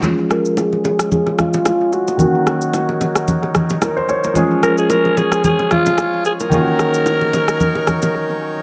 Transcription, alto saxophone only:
X:1
M:4/4
L:1/16
Q:"Swing 16ths" 1/4=111
K:Db
V:1 name="Alto saxophone"
z2 B2 A2 A2 A2 F4 G2- | G8- G2 z6 | z2 B A B2 A2 A2 F4 A B- | B12- B2 z2 |]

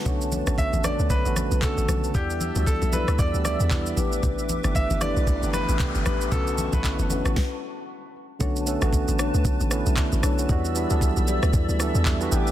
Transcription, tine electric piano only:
X:1
M:4/4
L:1/16
Q:"Swing 16ths" 1/4=115
K:Bm
V:1 name="Tine electric piano"
z16 | z16 | z16 | z16 |
z12 [Ad] [FB] [EA] [CF]- | [CF] z8 z3 e2 g2 |]
V:2 name="Tine electric piano"
[D,A,B,CF]2 z [D,A,B,CF]2 z [D,A,B,CA]2 z [D,A,B,CF]2 z [C,D,A,B,CF]3 z | [E,G,B,Df]2 z [E,G,B,DF]2 z [E,G,B,DA]2 z [E,G,B,DG]2 z [E,G,B,DE]2 [E,A,B,DG]2- | [E,A,B,DG]2 z [E,A,B,DG]2 z [E,A,B,DE]2 z [E,A,B,DG]2 z [E,A,B,DG]3 z | [D,A,CF]2 z [D,A,B,CE]2 z [D,A,B,CF]2 z8 |
[D,A,B,CF]2 [D,A,B,CA] [D,A,B,CF]6 z [D,A,B,CE]2 z4 | [E,G,B,DF]2 [E,G,B,DE] [E,F,G,B,DA]6 z [E,G,B,DA]2 z [E,G,B,DF] [E,A,B,DG]2 |]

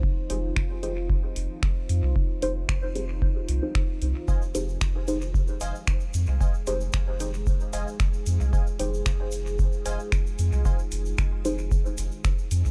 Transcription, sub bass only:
X:1
M:4/4
L:1/16
Q:1/4=113
K:Fm
V:1 name="Sub bass" clef=bass
z2 F,,,2 F,,,4- F,,, z F,,, z3 F,, C,, | z2 F,,,2 z6 C,, z3 C,, z | F,,, z F,,,2 z6 F,,, z3 F,, C,, | z2 F,,,2 z6 F,,, z3 F,, C,, |
z2 F,,,2 F,,,4- F,,, z F,,, z3 F,, C,, | F,,, z F,,,2 z6 F,,, z3 F,, C,, |]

